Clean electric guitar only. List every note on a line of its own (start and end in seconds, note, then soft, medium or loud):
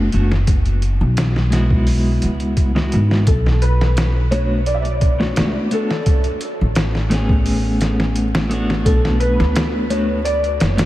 0.12 0.31 A3 medium
0.12 0.32 B3 medium
0.12 0.32 D4 medium
0.12 0.33 F#4 medium
1.50 2.71 G#3 medium
1.50 2.72 B3 medium
1.50 2.72 E4 medium
1.55 2.73 F#4 medium
2.75 3.25 G#3 medium
2.75 3.25 B3 medium
2.75 3.26 E4 medium
2.75 3.26 F#4 medium
4.32 4.61 A3 medium
4.32 4.61 B3 medium
4.32 4.61 D4 medium
4.32 4.62 F#4 medium
5.20 5.67 A3 medium
5.20 5.68 B3 medium
5.20 5.68 D4 medium
5.20 5.68 F#4 loud
5.71 5.90 A3 medium
5.71 5.90 B3 medium
5.71 5.91 D4 medium
5.71 5.91 F#4 medium
7.10 8.46 A3 medium
7.10 8.47 B3 medium
7.10 8.47 C#4 medium
7.14 8.48 G#4 medium
8.49 9.86 A3 loud
8.49 9.86 B3 medium
8.49 9.87 D4 medium
8.54 9.88 F#4 loud
9.90 10.19 A3 medium
9.90 10.19 B3 medium
9.90 10.20 D4 medium
9.90 10.20 F#4 medium
10.77 10.86 A3 loud
10.77 10.86 B3 medium
10.77 10.86 D4 medium
10.77 10.86 F#4 loud